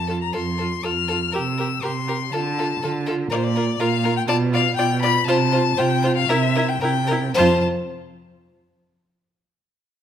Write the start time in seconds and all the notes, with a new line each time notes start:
Already playing: F2 A5
0.07 F4 A4
0.22 A#5
0.33 F2 F4 A4 C6
0.58 F4 A4
0.83 F2 F4 A4 F6
1.08 F4 A4
1.32 C3 G4 A#4 E6
1.58 G4 A#4
1.82 C3 G4 A#4 C6
2.08 G4 A#4
2.32 D3 F4 A4 A5
2.58 F4 A4
2.82 D3 F4 A4
3.07 F4 A4
3.30 A#2 F4 A#4 D5
3.36 C5
3.44 D5
3.56 F4 A#4
3.79 A#2 F4 A#4 F5
4.04 F4 A#4
4.17 G5
4.27 B2 F4 D5 A5
4.52 F4 D5 F5
4.76 B2 F4 D5 G5
5.02 F4 D5 B5
5.27 C3 F4 C5 A5
5.52 F4 C5
5.77 C3 F4 C5 G5
6.03 F4 C5
6.16 F5
6.29 C3 E4 A#4 E5
6.55 E4 A#4
6.69 G5
6.81 C3 E4 A#4 G5
7.07 A#4
7.11 E4
7.34 F2 F4 C5 A5